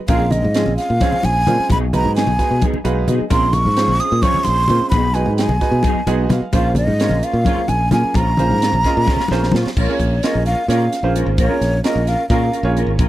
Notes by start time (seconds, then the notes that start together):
0.08 A#1 F3 G#3 C4 C#4 F4 G#4 A#4 F5, kick, closed hi-hat, muted conga
0.19 low conga
0.31 D#5, closed hi-hat, low conga
0.42 G#2, high conga
0.54 F3 G#3 C4 C#4 F4 G#4, snare, closed hi-hat
0.66 A#1, muted conga, low conga
0.77 F5, snare, closed hi-hat
0.90 A#2
1.01 F3 G#3 C4 C#4 F4 G#4 C5 C#5, kick, snare, closed hi-hat, high conga, low conga
1.12 muted fingered electric bass stroke, low conga
1.23 A#1 G#5, closed hi-hat, muted conga
1.46 A#2 G#3 C4 C#4 F4 C5, closed hi-hat, high conga, low conga
1.59 muted fingered electric bass stroke, low conga
1.70 B1 F#3 B3 D#4 G#4 B5, kick, closed hi-hat, muted conga, low conga
1.93 G#3 B3 D#4 F#4 B4 A#5, closed hi-hat, low conga
2.04 G#2, high conga, low conga
2.15 F#3 B3 D#4 G#4 G#5, snare, closed hi-hat
2.27 B1, muted conga, low conga
2.38 G#3 B3 D#4 F#4 G#4 B4, kick, snare, closed hi-hat
2.51 B2
2.62 F#3 B3 D#4 G#4, kick, closed hi-hat, high conga, low conga
2.74 muted fingered electric bass stroke, low conga
2.84 B1 G#3 B3 D#4 F#4 G#4 B4 F5, closed hi-hat, muted conga
3.08 B2 F#3 B3 D#4 G#4 D#5, closed hi-hat, high conga, low conga
3.21 muted fingered electric bass stroke
3.30 A#1 F3 G#3 C4 C#4 F4 G#4 A#4 C6, kick, closed hi-hat, muted conga
3.42 low conga
3.53 C#6, closed hi-hat, low conga
3.65 G#2, high conga
3.76 F3 G#3 C4 C#4 F4 G#4 C5, snare, closed hi-hat
3.88 A#1, muted conga, low conga
4.00 C4 C#4 G#4 D#6, closed hi-hat
4.12 A#2
4.22 F3 G#3 C4 C#4 F4 G#4 C5 C#5 C#6, kick, snare, closed hi-hat, high conga, low conga
4.34 muted fingered electric bass stroke, low conga
4.44 A#1 C4 C#4 G#4 C6, closed hi-hat, muted conga
4.68 A#2 G#3 C4 C#4 F4 C5, closed hi-hat, high conga, low conga
4.81 muted fingered electric bass stroke
4.89 B1 F#3 B3 D#4 G#4 B5, kick, closed hi-hat, muted conga
5.03 low conga
5.14 G#3 B3 D#4 F#4 B4 G#5, closed hi-hat
5.26 G#2, high conga
5.37 F#3 B3 D#4 G#4 G#5, snare, closed hi-hat
5.48 B1, muted conga, low conga
5.61 G#3 B3 D#4 F#4 B4, kick, snare, closed hi-hat
5.72 B2
5.83 F#3 B3 D#4 G#4, kick, closed hi-hat, high conga, low conga
5.95 muted fingered electric bass stroke
6.07 B1 G#3 B3 D#4 F#4 G#4 G#5, closed hi-hat, muted conga
6.29 B2 F5, snare, closed hi-hat, high conga, low conga
6.41 muted fingered electric bass stroke, low conga
6.53 A#1 G#3 A#3 C#4 F4 G#4 C5 F5, kick, closed hi-hat, muted conga
6.64 low conga
6.75 D#5, closed hi-hat, low conga
6.87 G#2, high conga
7.00 G#3 A#3 C#4 F4 G#4 C5 C#5, snare, closed hi-hat
7.09 A#1, muted conga, low conga
7.23 C#4 F4 C5 F5, closed hi-hat
7.33 A#2
7.45 G#3 A#3 C#4 F4 G#4 C5 C#5, kick, closed hi-hat, high conga, low conga
7.58 muted fingered electric bass stroke
7.68 A#1 G#5, closed hi-hat, muted conga
7.91 A#2 A#3 C#4 F4 G#4 A#4 G#5, snare, closed hi-hat, high conga, low conga
8.04 muted fingered electric bass stroke, low conga
8.14 A#1 G#3 C#4 F4 C5 A#5, kick, closed hi-hat, muted conga
8.26 low conga
8.37 A#3 C#4 F4 G#4 C5, closed hi-hat, low conga
8.50 G#2, high conga, low conga
8.61 G#3 C#4 F4 C5, snare, closed hi-hat, low conga
8.72 A#1, low conga
8.84 A#3 C#4 F4 G#4 C5 D#5, kick, snare, closed hi-hat
8.97 A#2
9.07 G#3 C#4 F4 C5, kick, snare, high conga
9.16 muted fingered electric bass stroke, snare, low conga
9.28 A#1 A#3 C#4 F4 G#4 C5, snare, muted conga, low conga
9.43 snare
9.52 A#2 G#3 C#4 F4 C5, snare, high conga, low conga
9.66 muted fingered electric bass stroke, snare
9.77 A#1 G#3 C#4 F4 A#4 C#5, kick, crash
9.89 A#3 C#4 F4 G#4 C#5
10.00 A#1, kick, closed hi-hat
10.23 G#3 A#3 C#4 F4 G#4 A#4 C#5 D#5, snare, closed hi-hat
10.35 A#1
10.46 C#4 F4 A#4 F5, closed hi-hat
10.68 A#2 G#3 A#3 C#4 F4 G#4 A#4 C#5 F5, snare, closed hi-hat
10.93 snare, closed hi-hat
11.03 A#1 A#3 C#4 F4 G#4 C5
11.15 G#3 C#4 F4 A#4, closed hi-hat
11.26 G#1
11.38 A#1 G#3 C#4 F4 A#4 C#5, kick, closed hi-hat
11.49 A#3 C#4 F4 G#4 A#4
11.61 A#1, snare, closed hi-hat
11.84 G#3 A#3 C#4 F4 G#4 A#4 D#5, snare, closed hi-hat
11.96 A#1
12.07 C#4 F4 A#4 F5, snare, closed hi-hat
12.29 A#2 G#3 A#3 C#4 F4 G#4 A#4 F5, kick, closed hi-hat
12.52 C#4 F4 A#4, closed hi-hat
12.63 A#1 A#3 C#4 F4 G#4 C#5
12.76 G#3 C#4 F4 A#4, closed hi-hat
12.87 G#1
12.99 A#1 G#3 C#4 F4 A#4, kick, closed hi-hat